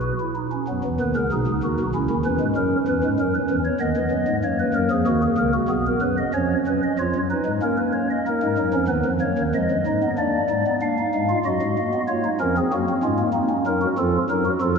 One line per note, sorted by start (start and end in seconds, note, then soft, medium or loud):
0.00 0.12 B1 medium
0.00 0.12 B2 medium
0.00 0.16 F#4 medium
0.00 0.12 B4 medium
0.20 0.34 E4 medium
0.35 0.50 D#4 medium
0.52 0.66 C#4 medium
0.68 0.82 F#2 medium
0.68 0.82 F#3 medium
0.68 1.23 B3 medium
0.84 0.98 E2 medium
0.84 0.98 E3 medium
1.00 1.14 D#2 medium
1.00 1.14 D#3 medium
1.00 1.14 B4 medium
1.16 1.30 C#2 medium
1.16 1.29 C#3 medium
1.16 1.29 A#4 medium
1.32 1.46 B1 medium
1.32 1.46 B2 medium
1.32 1.86 D#4 medium
1.32 1.51 G#4 medium
1.47 1.61 C#2 medium
1.47 1.61 C#3 medium
1.63 1.77 D#2 medium
1.63 1.77 D#3 medium
1.63 1.83 F#4 medium
1.80 1.93 B1 medium
1.80 1.93 B2 medium
1.94 2.08 C#2 medium
1.94 2.08 C#3 medium
1.94 2.14 C#4 medium
1.94 2.14 E4 medium
2.10 2.24 D#2 medium
2.10 2.23 D#3 medium
2.25 2.39 E2 medium
2.25 2.39 E3 medium
2.25 3.59 C#4 medium
2.25 2.45 B4 medium
2.40 2.54 G#2 medium
2.40 2.54 G#3 medium
2.56 2.75 F#2 medium
2.56 2.76 F#3 medium
2.56 2.76 A#4 medium
2.87 3.01 E2 medium
2.87 3.01 E3 medium
2.87 3.07 B4 medium
3.04 3.17 G#2 medium
3.04 3.17 G#3 medium
3.19 3.39 F#2 medium
3.19 3.38 F#3 medium
3.19 3.33 A#4 medium
3.35 3.54 B4 medium
3.50 3.69 E2 medium
3.50 3.70 E3 medium
3.65 3.79 C#5 medium
3.80 3.94 D#2 medium
3.80 3.94 D#3 medium
3.80 4.34 B3 medium
3.80 4.34 D#5 medium
3.97 4.10 E2 medium
3.97 4.10 E3 medium
4.11 4.25 F#2 medium
4.11 4.25 F#3 medium
4.28 4.41 G#2 medium
4.28 4.41 G#3 medium
4.44 4.64 F#2 medium
4.44 4.64 F#3 medium
4.44 5.53 A#3 medium
4.44 4.57 C#5 medium
4.60 4.73 B4 medium
4.74 4.88 F#2 medium
4.74 4.88 F#3 medium
4.74 4.88 A#4 medium
4.91 5.04 F2 medium
4.91 5.04 F3 medium
4.91 5.04 G#4 medium
5.07 5.27 D#2 medium
5.07 5.27 D#3 medium
5.07 5.20 F#4 medium
5.22 5.36 G#4 medium
5.37 5.57 C#2 medium
5.37 5.57 C#3 medium
5.37 5.52 A#4 medium
5.54 5.68 F#4 medium
5.68 5.89 B1 medium
5.68 5.89 B2 medium
5.68 6.25 B3 medium
5.68 5.83 G#4 medium
5.86 6.00 A#4 medium
6.01 6.22 F#2 medium
6.01 6.21 F#3 medium
6.01 6.15 B4 medium
6.18 6.32 D#5 medium
6.34 6.54 F2 medium
6.34 6.54 F3 medium
6.34 6.90 C#4 medium
6.34 6.54 C#5 medium
6.67 6.87 F#2 medium
6.67 6.87 F#3 medium
6.67 6.81 B4 medium
6.83 6.97 D#5 medium
6.99 7.12 F2 medium
6.99 7.13 F3 medium
6.99 7.19 F4 medium
6.99 7.19 C#5 medium
7.15 7.35 F#2 medium
7.15 7.34 F#3 medium
7.30 7.50 D#4 medium
7.30 7.50 B4 medium
7.46 7.60 G#2 medium
7.46 7.60 G#3 medium
7.62 8.17 A#3 medium
7.62 8.17 C#4 medium
7.62 7.76 A#4 medium
7.77 7.92 B4 medium
7.93 8.08 C#5 medium
8.11 8.24 D#5 medium
8.27 8.41 A#3 medium
8.27 8.47 D#4 medium
8.27 8.82 A#4 medium
8.43 8.57 G#2 medium
8.43 8.56 G#3 medium
8.58 8.72 F#2 medium
8.58 8.72 F#3 medium
8.58 8.72 D#4 medium
8.73 8.88 F2 medium
8.73 8.88 F3 medium
8.73 8.88 C#4 medium
8.88 9.03 D#2 medium
8.88 9.04 D#3 medium
8.88 9.09 B3 medium
8.88 9.09 B4 medium
9.05 9.20 F2 medium
9.05 9.20 F3 medium
9.21 9.36 F#2 medium
9.21 9.36 F#3 medium
9.21 9.42 A#3 medium
9.21 9.42 C#5 medium
9.38 9.53 D#2 medium
9.38 9.53 D#3 medium
9.55 9.69 F2 medium
9.55 9.69 F3 medium
9.55 9.75 G#3 medium
9.55 10.10 D#5 medium
9.71 9.85 F#2 medium
9.71 9.85 F#3 medium
9.87 10.01 G#2 medium
9.87 10.01 G#3 medium
9.87 10.07 D#4 medium
10.03 10.17 B3 medium
10.18 10.38 A#3 medium
10.18 10.38 D4 medium
10.18 10.74 D5 medium
10.50 10.64 G#2 medium
10.50 10.64 G#3 medium
10.50 10.70 D#4 medium
10.67 10.80 B3 medium
10.82 11.02 A#3 medium
10.82 10.96 D4 medium
10.82 11.37 F5 medium
10.98 11.18 D#4 medium
11.15 11.35 G#2 medium
11.15 11.35 G#3 medium
11.30 11.44 F4 medium
11.45 11.60 F#2 medium
11.45 11.60 F#3 medium
11.45 12.00 F#4 medium
11.45 12.00 D#5 medium
11.62 11.76 G#2 medium
11.62 11.76 G#3 medium
11.78 11.92 A#3 medium
11.93 12.07 B3 medium
12.08 12.28 A#3 medium
12.08 12.23 F4 medium
12.08 12.28 C#5 medium
12.25 12.38 D#4 medium
12.40 12.60 F2 medium
12.40 12.60 F3 medium
12.40 12.54 C#4 medium
12.40 12.54 A#4 medium
12.57 12.70 C4 medium
12.57 12.70 G#4 medium
12.73 12.93 F#2 medium
12.73 12.92 F#3 medium
12.73 12.86 A#3 medium
12.73 12.92 F#4 medium
12.89 13.02 C4 medium
13.03 13.23 G#2 medium
13.03 13.23 G#3 medium
13.03 13.17 C#4 medium
13.03 13.23 F4 medium
13.19 13.31 A#3 medium
13.33 13.54 A#3 medium
13.33 13.48 C4 medium
13.33 13.53 D#4 medium
13.49 13.64 C#4 medium
13.66 13.86 F#2 medium
13.66 13.86 F#3 medium
13.66 13.80 D#4 medium
13.66 13.86 A#4 medium
13.82 13.95 F#4 medium
13.98 14.18 F2 medium
13.98 14.18 F3 medium
13.98 14.18 F4 medium
13.98 14.18 A4 loud
14.30 14.49 F#2 medium
14.30 14.49 F#3 medium
14.30 14.44 D#4 medium
14.30 14.49 A#4 loud
14.45 14.59 F#4 medium
14.61 14.79 F2 medium
14.61 14.79 F3 medium
14.61 14.79 F4 medium
14.61 14.74 A4 loud